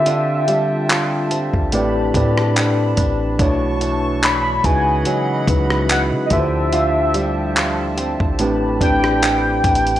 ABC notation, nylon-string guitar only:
X:1
M:4/4
L:1/8
Q:"Swing 16ths" 1/4=72
K:Dlyd
V:1 name="Nylon-string guitar"
[D,=F] =G, F =C A,, D C D | [B,,D] E, D C, F, E B, D, | [D,=F] =G, F =C A,, D C D |]